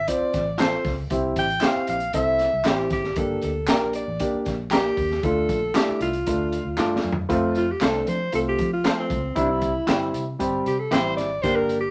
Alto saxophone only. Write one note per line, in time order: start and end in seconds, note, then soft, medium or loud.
0.08 0.59 D5 medium
0.60 0.96 C5 medium
1.39 1.66 G5 loud
1.65 1.89 F5 loud
1.90 2.13 F5 loud
2.15 2.69 E5 loud
2.67 2.92 G4 medium
2.93 3.20 G4 medium
3.18 3.44 A4 medium
3.44 3.72 A4 medium
3.70 3.95 A#4 medium
3.96 4.43 D5 medium
4.72 5.26 G4 loud
5.24 5.75 A4 loud
5.76 6.00 G4 loud
6.02 7.01 F4 medium
7.58 7.73 F4 medium
7.71 7.83 G4 medium
7.84 8.10 A4 loud
8.09 8.34 C5 loud
8.35 8.41 A4 medium
8.49 8.72 G4 loud
8.74 8.97 F4 medium
9.00 9.35 C4 medium
9.37 9.52 D4 medium
9.50 10.28 E4 medium
10.67 10.81 G4 medium
10.79 10.94 A4 medium
10.93 11.16 C5 loud
11.17 11.44 D5 loud
11.42 11.57 C5 loud
11.56 11.80 A#4 loud
11.81 11.91 G4 medium